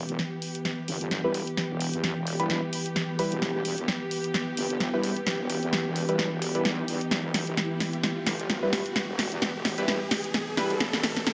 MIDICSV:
0, 0, Header, 1, 6, 480
1, 0, Start_track
1, 0, Key_signature, 1, "minor"
1, 0, Tempo, 461538
1, 1637, Time_signature, 4, 2, 24, 8
1, 11783, End_track
2, 0, Start_track
2, 0, Title_t, "Synth stab"
2, 0, Program_c, 0, 62
2, 1293, Note_on_c, 0, 55, 79
2, 1293, Note_on_c, 0, 64, 71
2, 1293, Note_on_c, 0, 71, 86
2, 1503, Note_off_c, 0, 55, 0
2, 1503, Note_off_c, 0, 64, 0
2, 1503, Note_off_c, 0, 71, 0
2, 2492, Note_on_c, 0, 55, 83
2, 2492, Note_on_c, 0, 64, 77
2, 2492, Note_on_c, 0, 71, 96
2, 2703, Note_off_c, 0, 55, 0
2, 2703, Note_off_c, 0, 64, 0
2, 2703, Note_off_c, 0, 71, 0
2, 3317, Note_on_c, 0, 55, 94
2, 3317, Note_on_c, 0, 64, 87
2, 3317, Note_on_c, 0, 71, 105
2, 3464, Note_off_c, 0, 55, 0
2, 3464, Note_off_c, 0, 64, 0
2, 3464, Note_off_c, 0, 71, 0
2, 5132, Note_on_c, 0, 55, 80
2, 5132, Note_on_c, 0, 64, 75
2, 5132, Note_on_c, 0, 71, 88
2, 5343, Note_off_c, 0, 55, 0
2, 5343, Note_off_c, 0, 64, 0
2, 5343, Note_off_c, 0, 71, 0
2, 6331, Note_on_c, 0, 55, 83
2, 6331, Note_on_c, 0, 64, 77
2, 6331, Note_on_c, 0, 71, 93
2, 6542, Note_off_c, 0, 55, 0
2, 6542, Note_off_c, 0, 64, 0
2, 6542, Note_off_c, 0, 71, 0
2, 6811, Note_on_c, 0, 55, 95
2, 6811, Note_on_c, 0, 64, 89
2, 6811, Note_on_c, 0, 71, 108
2, 6932, Note_off_c, 0, 55, 0
2, 6932, Note_off_c, 0, 64, 0
2, 6932, Note_off_c, 0, 71, 0
2, 8971, Note_on_c, 0, 55, 81
2, 8971, Note_on_c, 0, 64, 72
2, 8971, Note_on_c, 0, 71, 89
2, 9182, Note_off_c, 0, 55, 0
2, 9182, Note_off_c, 0, 64, 0
2, 9182, Note_off_c, 0, 71, 0
2, 10171, Note_on_c, 0, 71, 94
2, 10172, Note_on_c, 0, 55, 86
2, 10172, Note_on_c, 0, 64, 80
2, 10382, Note_off_c, 0, 71, 0
2, 10383, Note_off_c, 0, 55, 0
2, 10383, Note_off_c, 0, 64, 0
2, 10996, Note_on_c, 0, 55, 94
2, 10997, Note_on_c, 0, 64, 87
2, 10997, Note_on_c, 0, 71, 106
2, 11144, Note_off_c, 0, 55, 0
2, 11144, Note_off_c, 0, 64, 0
2, 11144, Note_off_c, 0, 71, 0
2, 11783, End_track
3, 0, Start_track
3, 0, Title_t, "String section"
3, 0, Program_c, 1, 48
3, 0, Note_on_c, 1, 52, 75
3, 0, Note_on_c, 1, 59, 70
3, 0, Note_on_c, 1, 67, 83
3, 11783, Note_off_c, 1, 52, 0
3, 11783, Note_off_c, 1, 59, 0
3, 11783, Note_off_c, 1, 67, 0
3, 11783, End_track
4, 0, Start_track
4, 0, Title_t, "Wobble bass"
4, 0, Program_c, 2, 39
4, 93, Note_on_c, 2, 28, 96
4, 181, Note_off_c, 2, 28, 0
4, 918, Note_on_c, 2, 31, 92
4, 1271, Note_off_c, 2, 31, 0
4, 1293, Note_on_c, 2, 28, 93
4, 1511, Note_off_c, 2, 28, 0
4, 1772, Note_on_c, 2, 28, 95
4, 1991, Note_off_c, 2, 28, 0
4, 2013, Note_on_c, 2, 40, 95
4, 2231, Note_off_c, 2, 40, 0
4, 2252, Note_on_c, 2, 28, 94
4, 2471, Note_off_c, 2, 28, 0
4, 2493, Note_on_c, 2, 28, 96
4, 2711, Note_off_c, 2, 28, 0
4, 3453, Note_on_c, 2, 28, 90
4, 3541, Note_off_c, 2, 28, 0
4, 3558, Note_on_c, 2, 28, 101
4, 3911, Note_off_c, 2, 28, 0
4, 3933, Note_on_c, 2, 28, 92
4, 4021, Note_off_c, 2, 28, 0
4, 4757, Note_on_c, 2, 31, 96
4, 5111, Note_off_c, 2, 31, 0
4, 5133, Note_on_c, 2, 28, 93
4, 5351, Note_off_c, 2, 28, 0
4, 5612, Note_on_c, 2, 28, 96
4, 5831, Note_off_c, 2, 28, 0
4, 5852, Note_on_c, 2, 40, 97
4, 6071, Note_off_c, 2, 40, 0
4, 6092, Note_on_c, 2, 28, 92
4, 6311, Note_off_c, 2, 28, 0
4, 6332, Note_on_c, 2, 28, 95
4, 6550, Note_off_c, 2, 28, 0
4, 6571, Note_on_c, 2, 28, 93
4, 6900, Note_off_c, 2, 28, 0
4, 6917, Note_on_c, 2, 40, 96
4, 7271, Note_off_c, 2, 40, 0
4, 7396, Note_on_c, 2, 28, 98
4, 7750, Note_off_c, 2, 28, 0
4, 7771, Note_on_c, 2, 28, 94
4, 7860, Note_off_c, 2, 28, 0
4, 8595, Note_on_c, 2, 31, 99
4, 8950, Note_off_c, 2, 31, 0
4, 8971, Note_on_c, 2, 28, 100
4, 9190, Note_off_c, 2, 28, 0
4, 9452, Note_on_c, 2, 28, 98
4, 9670, Note_off_c, 2, 28, 0
4, 9692, Note_on_c, 2, 40, 98
4, 9911, Note_off_c, 2, 40, 0
4, 9931, Note_on_c, 2, 28, 93
4, 10150, Note_off_c, 2, 28, 0
4, 10171, Note_on_c, 2, 28, 98
4, 10390, Note_off_c, 2, 28, 0
4, 11131, Note_on_c, 2, 28, 98
4, 11220, Note_off_c, 2, 28, 0
4, 11236, Note_on_c, 2, 28, 101
4, 11590, Note_off_c, 2, 28, 0
4, 11612, Note_on_c, 2, 28, 101
4, 11700, Note_off_c, 2, 28, 0
4, 11783, End_track
5, 0, Start_track
5, 0, Title_t, "Riser"
5, 0, Program_c, 3, 103
5, 0, Note_on_c, 3, 60, 77
5, 11783, Note_off_c, 3, 60, 0
5, 11783, End_track
6, 0, Start_track
6, 0, Title_t, "Drums"
6, 92, Note_on_c, 9, 42, 62
6, 196, Note_off_c, 9, 42, 0
6, 196, Note_on_c, 9, 38, 47
6, 196, Note_on_c, 9, 42, 51
6, 300, Note_off_c, 9, 38, 0
6, 300, Note_off_c, 9, 42, 0
6, 436, Note_on_c, 9, 46, 87
6, 540, Note_off_c, 9, 46, 0
6, 572, Note_on_c, 9, 42, 67
6, 676, Note_off_c, 9, 42, 0
6, 676, Note_on_c, 9, 38, 47
6, 676, Note_on_c, 9, 42, 51
6, 780, Note_off_c, 9, 38, 0
6, 780, Note_off_c, 9, 42, 0
6, 916, Note_on_c, 9, 46, 101
6, 1020, Note_off_c, 9, 46, 0
6, 1052, Note_on_c, 9, 42, 63
6, 1156, Note_off_c, 9, 42, 0
6, 1157, Note_on_c, 9, 38, 48
6, 1157, Note_on_c, 9, 42, 50
6, 1261, Note_off_c, 9, 38, 0
6, 1261, Note_off_c, 9, 42, 0
6, 1397, Note_on_c, 9, 46, 86
6, 1501, Note_off_c, 9, 46, 0
6, 1532, Note_on_c, 9, 42, 66
6, 1636, Note_off_c, 9, 42, 0
6, 1637, Note_on_c, 9, 38, 54
6, 1637, Note_on_c, 9, 42, 53
6, 1741, Note_off_c, 9, 38, 0
6, 1741, Note_off_c, 9, 42, 0
6, 1877, Note_on_c, 9, 46, 105
6, 1981, Note_off_c, 9, 46, 0
6, 2012, Note_on_c, 9, 42, 63
6, 2116, Note_off_c, 9, 42, 0
6, 2117, Note_on_c, 9, 38, 53
6, 2117, Note_on_c, 9, 42, 53
6, 2221, Note_off_c, 9, 38, 0
6, 2221, Note_off_c, 9, 42, 0
6, 2358, Note_on_c, 9, 46, 91
6, 2462, Note_off_c, 9, 46, 0
6, 2493, Note_on_c, 9, 42, 62
6, 2597, Note_off_c, 9, 42, 0
6, 2598, Note_on_c, 9, 38, 53
6, 2598, Note_on_c, 9, 42, 51
6, 2702, Note_off_c, 9, 38, 0
6, 2702, Note_off_c, 9, 42, 0
6, 2837, Note_on_c, 9, 46, 112
6, 2941, Note_off_c, 9, 46, 0
6, 2972, Note_on_c, 9, 42, 61
6, 3076, Note_off_c, 9, 42, 0
6, 3077, Note_on_c, 9, 38, 53
6, 3077, Note_on_c, 9, 42, 51
6, 3181, Note_off_c, 9, 38, 0
6, 3181, Note_off_c, 9, 42, 0
6, 3317, Note_on_c, 9, 46, 87
6, 3421, Note_off_c, 9, 46, 0
6, 3452, Note_on_c, 9, 42, 64
6, 3556, Note_off_c, 9, 42, 0
6, 3557, Note_on_c, 9, 38, 60
6, 3557, Note_on_c, 9, 42, 51
6, 3661, Note_off_c, 9, 38, 0
6, 3661, Note_off_c, 9, 42, 0
6, 3796, Note_on_c, 9, 46, 106
6, 3900, Note_off_c, 9, 46, 0
6, 3931, Note_on_c, 9, 42, 60
6, 4035, Note_off_c, 9, 42, 0
6, 4036, Note_on_c, 9, 38, 62
6, 4036, Note_on_c, 9, 42, 50
6, 4140, Note_off_c, 9, 38, 0
6, 4140, Note_off_c, 9, 42, 0
6, 4276, Note_on_c, 9, 46, 95
6, 4380, Note_off_c, 9, 46, 0
6, 4411, Note_on_c, 9, 42, 63
6, 4515, Note_off_c, 9, 42, 0
6, 4516, Note_on_c, 9, 38, 62
6, 4516, Note_on_c, 9, 42, 49
6, 4620, Note_off_c, 9, 38, 0
6, 4620, Note_off_c, 9, 42, 0
6, 4756, Note_on_c, 9, 46, 110
6, 4860, Note_off_c, 9, 46, 0
6, 4891, Note_on_c, 9, 42, 63
6, 4995, Note_off_c, 9, 42, 0
6, 4996, Note_on_c, 9, 38, 63
6, 4996, Note_on_c, 9, 42, 49
6, 5100, Note_off_c, 9, 38, 0
6, 5100, Note_off_c, 9, 42, 0
6, 5236, Note_on_c, 9, 46, 92
6, 5340, Note_off_c, 9, 46, 0
6, 5371, Note_on_c, 9, 42, 61
6, 5475, Note_off_c, 9, 42, 0
6, 5476, Note_on_c, 9, 38, 66
6, 5476, Note_on_c, 9, 42, 52
6, 5580, Note_off_c, 9, 38, 0
6, 5580, Note_off_c, 9, 42, 0
6, 5716, Note_on_c, 9, 46, 105
6, 5820, Note_off_c, 9, 46, 0
6, 5852, Note_on_c, 9, 42, 56
6, 5956, Note_off_c, 9, 42, 0
6, 5956, Note_on_c, 9, 38, 67
6, 5956, Note_on_c, 9, 42, 50
6, 6060, Note_off_c, 9, 38, 0
6, 6060, Note_off_c, 9, 42, 0
6, 6196, Note_on_c, 9, 46, 94
6, 6300, Note_off_c, 9, 46, 0
6, 6331, Note_on_c, 9, 42, 59
6, 6435, Note_off_c, 9, 42, 0
6, 6436, Note_on_c, 9, 38, 70
6, 6436, Note_on_c, 9, 42, 47
6, 6540, Note_off_c, 9, 38, 0
6, 6540, Note_off_c, 9, 42, 0
6, 6676, Note_on_c, 9, 46, 109
6, 6780, Note_off_c, 9, 46, 0
6, 6812, Note_on_c, 9, 42, 59
6, 6916, Note_off_c, 9, 42, 0
6, 6917, Note_on_c, 9, 38, 69
6, 6917, Note_on_c, 9, 42, 47
6, 7021, Note_off_c, 9, 38, 0
6, 7021, Note_off_c, 9, 42, 0
6, 7157, Note_on_c, 9, 46, 91
6, 7261, Note_off_c, 9, 46, 0
6, 7292, Note_on_c, 9, 42, 61
6, 7396, Note_off_c, 9, 42, 0
6, 7397, Note_on_c, 9, 38, 73
6, 7397, Note_on_c, 9, 42, 50
6, 7501, Note_off_c, 9, 38, 0
6, 7501, Note_off_c, 9, 42, 0
6, 7637, Note_on_c, 9, 38, 74
6, 7637, Note_on_c, 9, 46, 105
6, 7741, Note_off_c, 9, 38, 0
6, 7741, Note_off_c, 9, 46, 0
6, 7772, Note_on_c, 9, 42, 58
6, 7876, Note_off_c, 9, 42, 0
6, 7877, Note_on_c, 9, 38, 74
6, 7877, Note_on_c, 9, 42, 51
6, 7981, Note_off_c, 9, 38, 0
6, 7981, Note_off_c, 9, 42, 0
6, 8116, Note_on_c, 9, 38, 73
6, 8116, Note_on_c, 9, 46, 89
6, 8220, Note_off_c, 9, 38, 0
6, 8220, Note_off_c, 9, 46, 0
6, 8251, Note_on_c, 9, 42, 60
6, 8355, Note_off_c, 9, 42, 0
6, 8356, Note_on_c, 9, 38, 77
6, 8356, Note_on_c, 9, 42, 49
6, 8460, Note_off_c, 9, 38, 0
6, 8460, Note_off_c, 9, 42, 0
6, 8596, Note_on_c, 9, 38, 84
6, 8596, Note_on_c, 9, 46, 108
6, 8700, Note_off_c, 9, 38, 0
6, 8700, Note_off_c, 9, 46, 0
6, 8732, Note_on_c, 9, 42, 63
6, 8836, Note_off_c, 9, 42, 0
6, 8836, Note_on_c, 9, 38, 78
6, 8836, Note_on_c, 9, 42, 50
6, 8940, Note_off_c, 9, 38, 0
6, 8940, Note_off_c, 9, 42, 0
6, 9076, Note_on_c, 9, 38, 80
6, 9076, Note_on_c, 9, 46, 91
6, 9180, Note_off_c, 9, 38, 0
6, 9180, Note_off_c, 9, 46, 0
6, 9211, Note_on_c, 9, 42, 62
6, 9315, Note_off_c, 9, 42, 0
6, 9316, Note_on_c, 9, 38, 84
6, 9316, Note_on_c, 9, 42, 52
6, 9420, Note_off_c, 9, 38, 0
6, 9420, Note_off_c, 9, 42, 0
6, 9556, Note_on_c, 9, 38, 80
6, 9556, Note_on_c, 9, 46, 100
6, 9660, Note_off_c, 9, 38, 0
6, 9660, Note_off_c, 9, 46, 0
6, 9691, Note_on_c, 9, 42, 61
6, 9795, Note_off_c, 9, 42, 0
6, 9796, Note_on_c, 9, 38, 86
6, 9796, Note_on_c, 9, 42, 54
6, 9900, Note_off_c, 9, 38, 0
6, 9900, Note_off_c, 9, 42, 0
6, 10036, Note_on_c, 9, 38, 86
6, 10036, Note_on_c, 9, 46, 92
6, 10140, Note_off_c, 9, 38, 0
6, 10140, Note_off_c, 9, 46, 0
6, 10170, Note_on_c, 9, 42, 64
6, 10274, Note_off_c, 9, 42, 0
6, 10275, Note_on_c, 9, 38, 89
6, 10275, Note_on_c, 9, 42, 51
6, 10379, Note_off_c, 9, 38, 0
6, 10379, Note_off_c, 9, 42, 0
6, 10515, Note_on_c, 9, 38, 90
6, 10515, Note_on_c, 9, 46, 108
6, 10619, Note_off_c, 9, 38, 0
6, 10619, Note_off_c, 9, 46, 0
6, 10651, Note_on_c, 9, 42, 63
6, 10755, Note_off_c, 9, 42, 0
6, 10756, Note_on_c, 9, 38, 91
6, 10756, Note_on_c, 9, 42, 51
6, 10860, Note_off_c, 9, 38, 0
6, 10860, Note_off_c, 9, 42, 0
6, 10996, Note_on_c, 9, 38, 90
6, 10996, Note_on_c, 9, 46, 86
6, 11100, Note_off_c, 9, 38, 0
6, 11100, Note_off_c, 9, 46, 0
6, 11132, Note_on_c, 9, 42, 65
6, 11236, Note_off_c, 9, 42, 0
6, 11236, Note_on_c, 9, 38, 96
6, 11236, Note_on_c, 9, 42, 55
6, 11340, Note_off_c, 9, 38, 0
6, 11340, Note_off_c, 9, 42, 0
6, 11371, Note_on_c, 9, 38, 82
6, 11475, Note_off_c, 9, 38, 0
6, 11476, Note_on_c, 9, 38, 89
6, 11476, Note_on_c, 9, 46, 104
6, 11580, Note_off_c, 9, 38, 0
6, 11580, Note_off_c, 9, 46, 0
6, 11612, Note_on_c, 9, 38, 76
6, 11612, Note_on_c, 9, 42, 65
6, 11716, Note_off_c, 9, 38, 0
6, 11716, Note_off_c, 9, 42, 0
6, 11717, Note_on_c, 9, 38, 96
6, 11717, Note_on_c, 9, 42, 54
6, 11783, Note_off_c, 9, 38, 0
6, 11783, Note_off_c, 9, 42, 0
6, 11783, End_track
0, 0, End_of_file